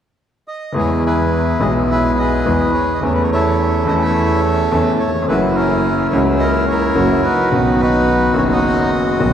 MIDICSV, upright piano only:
0, 0, Header, 1, 2, 480
1, 0, Start_track
1, 0, Key_signature, 4, "major"
1, 0, Tempo, 564440
1, 650, Time_signature, 4, 2, 24, 8
1, 7934, End_track
2, 0, Start_track
2, 0, Title_t, "Upright piano"
2, 0, Program_c, 0, 0
2, 616, Note_on_c, 0, 52, 59
2, 629, Note_off_c, 0, 52, 0
2, 630, Note_on_c, 0, 40, 63
2, 630, Note_on_c, 0, 56, 52
2, 635, Note_on_c, 0, 52, 66
2, 637, Note_on_c, 0, 59, 50
2, 647, Note_on_c, 0, 68, 65
2, 1331, Note_off_c, 0, 40, 0
2, 1331, Note_off_c, 0, 56, 0
2, 1333, Note_off_c, 0, 52, 0
2, 1334, Note_off_c, 0, 59, 0
2, 1339, Note_off_c, 0, 68, 0
2, 1352, Note_on_c, 0, 52, 60
2, 1358, Note_on_c, 0, 56, 52
2, 1366, Note_on_c, 0, 35, 72
2, 1367, Note_on_c, 0, 47, 68
2, 1374, Note_on_c, 0, 59, 51
2, 1381, Note_on_c, 0, 68, 66
2, 2049, Note_off_c, 0, 52, 0
2, 2052, Note_off_c, 0, 56, 0
2, 2057, Note_off_c, 0, 35, 0
2, 2057, Note_off_c, 0, 47, 0
2, 2061, Note_off_c, 0, 59, 0
2, 2064, Note_off_c, 0, 68, 0
2, 2091, Note_on_c, 0, 52, 72
2, 2091, Note_on_c, 0, 56, 56
2, 2091, Note_on_c, 0, 59, 55
2, 2094, Note_on_c, 0, 40, 70
2, 2094, Note_on_c, 0, 68, 64
2, 2297, Note_off_c, 0, 56, 0
2, 2297, Note_off_c, 0, 59, 0
2, 2298, Note_off_c, 0, 40, 0
2, 2298, Note_off_c, 0, 52, 0
2, 2298, Note_off_c, 0, 68, 0
2, 2553, Note_on_c, 0, 52, 56
2, 2565, Note_on_c, 0, 57, 53
2, 2566, Note_off_c, 0, 52, 0
2, 2571, Note_on_c, 0, 52, 67
2, 2575, Note_on_c, 0, 40, 70
2, 2581, Note_on_c, 0, 61, 51
2, 2593, Note_on_c, 0, 69, 62
2, 3254, Note_off_c, 0, 57, 0
2, 3257, Note_off_c, 0, 52, 0
2, 3259, Note_off_c, 0, 40, 0
2, 3261, Note_off_c, 0, 61, 0
2, 3268, Note_off_c, 0, 69, 0
2, 3274, Note_on_c, 0, 52, 69
2, 3277, Note_on_c, 0, 57, 54
2, 3288, Note_on_c, 0, 40, 72
2, 3289, Note_on_c, 0, 61, 55
2, 3301, Note_on_c, 0, 69, 65
2, 3964, Note_off_c, 0, 57, 0
2, 3967, Note_off_c, 0, 52, 0
2, 3969, Note_off_c, 0, 40, 0
2, 3970, Note_off_c, 0, 61, 0
2, 3976, Note_off_c, 0, 69, 0
2, 4009, Note_on_c, 0, 40, 70
2, 4013, Note_on_c, 0, 52, 73
2, 4013, Note_on_c, 0, 57, 56
2, 4015, Note_on_c, 0, 69, 67
2, 4016, Note_on_c, 0, 61, 55
2, 4210, Note_off_c, 0, 40, 0
2, 4212, Note_off_c, 0, 52, 0
2, 4212, Note_off_c, 0, 57, 0
2, 4213, Note_off_c, 0, 61, 0
2, 4213, Note_off_c, 0, 69, 0
2, 4315, Note_on_c, 0, 39, 42
2, 4371, Note_off_c, 0, 39, 0
2, 4378, Note_on_c, 0, 40, 48
2, 4433, Note_off_c, 0, 40, 0
2, 4439, Note_on_c, 0, 41, 59
2, 4490, Note_on_c, 0, 52, 60
2, 4493, Note_off_c, 0, 41, 0
2, 4504, Note_on_c, 0, 58, 55
2, 4508, Note_on_c, 0, 42, 68
2, 4510, Note_on_c, 0, 54, 66
2, 4512, Note_on_c, 0, 61, 56
2, 4524, Note_on_c, 0, 66, 69
2, 5168, Note_off_c, 0, 52, 0
2, 5175, Note_off_c, 0, 58, 0
2, 5177, Note_off_c, 0, 42, 0
2, 5178, Note_off_c, 0, 54, 0
2, 5179, Note_off_c, 0, 61, 0
2, 5185, Note_off_c, 0, 66, 0
2, 5197, Note_on_c, 0, 52, 60
2, 5211, Note_on_c, 0, 58, 55
2, 5213, Note_on_c, 0, 37, 73
2, 5217, Note_on_c, 0, 49, 72
2, 5225, Note_on_c, 0, 61, 56
2, 5233, Note_on_c, 0, 66, 69
2, 5879, Note_off_c, 0, 52, 0
2, 5886, Note_off_c, 0, 58, 0
2, 5887, Note_off_c, 0, 37, 0
2, 5889, Note_off_c, 0, 49, 0
2, 5893, Note_off_c, 0, 61, 0
2, 5897, Note_off_c, 0, 66, 0
2, 5911, Note_on_c, 0, 52, 57
2, 5911, Note_on_c, 0, 61, 57
2, 5912, Note_on_c, 0, 42, 69
2, 5914, Note_on_c, 0, 66, 67
2, 5915, Note_on_c, 0, 54, 70
2, 5917, Note_on_c, 0, 58, 56
2, 6114, Note_off_c, 0, 52, 0
2, 6115, Note_off_c, 0, 42, 0
2, 6115, Note_off_c, 0, 61, 0
2, 6116, Note_off_c, 0, 54, 0
2, 6116, Note_off_c, 0, 66, 0
2, 6117, Note_off_c, 0, 58, 0
2, 6376, Note_on_c, 0, 51, 61
2, 6387, Note_on_c, 0, 59, 52
2, 6392, Note_on_c, 0, 47, 65
2, 6396, Note_on_c, 0, 35, 65
2, 6397, Note_on_c, 0, 61, 53
2, 6410, Note_on_c, 0, 66, 62
2, 7062, Note_off_c, 0, 51, 0
2, 7068, Note_off_c, 0, 59, 0
2, 7070, Note_off_c, 0, 47, 0
2, 7072, Note_off_c, 0, 35, 0
2, 7073, Note_off_c, 0, 61, 0
2, 7079, Note_off_c, 0, 66, 0
2, 7082, Note_on_c, 0, 51, 54
2, 7091, Note_on_c, 0, 59, 54
2, 7094, Note_on_c, 0, 30, 69
2, 7094, Note_on_c, 0, 42, 72
2, 7097, Note_on_c, 0, 61, 54
2, 7109, Note_on_c, 0, 66, 65
2, 7792, Note_off_c, 0, 51, 0
2, 7796, Note_off_c, 0, 59, 0
2, 7798, Note_off_c, 0, 30, 0
2, 7798, Note_off_c, 0, 42, 0
2, 7799, Note_off_c, 0, 61, 0
2, 7805, Note_off_c, 0, 66, 0
2, 7821, Note_on_c, 0, 61, 50
2, 7822, Note_on_c, 0, 35, 64
2, 7822, Note_on_c, 0, 51, 60
2, 7825, Note_on_c, 0, 47, 68
2, 7825, Note_on_c, 0, 66, 65
2, 7826, Note_on_c, 0, 59, 52
2, 7934, Note_off_c, 0, 35, 0
2, 7934, Note_off_c, 0, 47, 0
2, 7934, Note_off_c, 0, 51, 0
2, 7934, Note_off_c, 0, 59, 0
2, 7934, Note_off_c, 0, 61, 0
2, 7934, Note_off_c, 0, 66, 0
2, 7934, End_track
0, 0, End_of_file